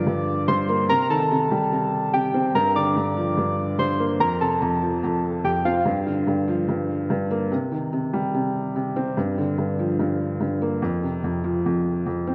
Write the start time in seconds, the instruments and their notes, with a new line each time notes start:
Already playing: felt piano G2 D3 F3, synth keys D6
0.07 felt piano G2
0.48 felt piano G2, synth keys C6
0.69 felt piano A#3
0.89 felt piano C3, synth keys A#5
1.10 felt piano D#3, synth keys A5
1.31 felt piano C3
1.51 felt piano G3
1.72 felt piano C3
2.13 felt piano C3, synth keys G5
2.34 felt piano C4
2.55 felt piano G2, synth keys A#5
2.76 felt piano D3, synth keys D6
2.96 felt piano G2
3.17 felt piano F3
3.37 felt piano G2
3.79 felt piano G2, synth keys C6
4.00 felt piano A#3
4.20 felt piano F2, synth keys A#5
4.41 felt piano C3, synth keys A5
4.62 felt piano F2
4.82 felt piano F3
5.04 felt piano F2
5.44 felt piano F2, synth keys G5
5.65 felt piano C4, synth keys F5
5.85 felt piano G2
6.07 felt piano D3
6.27 felt piano G2
6.48 felt piano F3
6.69 felt piano G2
7.10 felt piano G2
7.31 felt piano A#3
7.52 felt piano C3
7.72 felt piano D#3
7.93 felt piano C3
8.13 felt piano G3
8.34 felt piano C3
8.76 felt piano C3
8.96 felt piano C4
9.17 felt piano G2
9.38 felt piano D3
9.58 felt piano G2
9.79 felt piano F3
9.99 felt piano G2
10.41 felt piano G2
10.62 felt piano A#3
10.82 felt piano F2
11.03 felt piano C3
11.24 felt piano F2
11.44 felt piano F3
11.66 felt piano F2
12.06 felt piano F2
12.27 felt piano C4